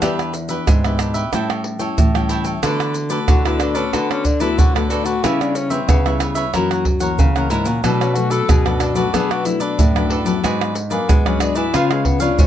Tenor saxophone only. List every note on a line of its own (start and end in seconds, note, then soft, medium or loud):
0.02 0.22 G3 medium
3.29 3.47 F#4 medium
3.45 3.61 E4 medium
3.59 3.76 D4 medium
3.75 3.96 C#4 medium
3.94 4.12 B3 medium
4.11 4.27 C#4 medium
4.25 4.42 D4 medium
4.41 4.60 E4 medium
4.58 4.77 F#4 medium
4.75 4.91 A3 medium
4.89 5.06 D4 medium
5.05 5.25 F#4 medium
5.24 5.43 E4 medium
5.41 5.57 D4 medium
5.55 5.73 C#4 medium
5.71 5.88 C4 medium
5.89 6.09 B3 medium
8.01 8.16 C#4 medium
8.15 8.32 F#4 medium
8.31 8.51 A4 medium
8.50 8.68 G#4 medium
8.67 8.81 B3 medium
8.79 8.97 D4 medium
8.96 9.16 F#4 medium
9.14 9.33 G#4 loud
9.31 9.47 F#4 medium
9.46 9.63 E4 medium
9.61 10.27 D4 medium
10.91 11.11 A#3 medium
11.10 11.28 B3 medium
11.27 11.42 C#4 medium
11.40 11.58 D4 medium
11.56 11.77 E4 medium
11.75 11.94 F4 medium
11.92 12.07 G#3 medium
12.05 12.22 B3 medium
12.21 12.41 D4 medium
12.39 12.47 C#4 medium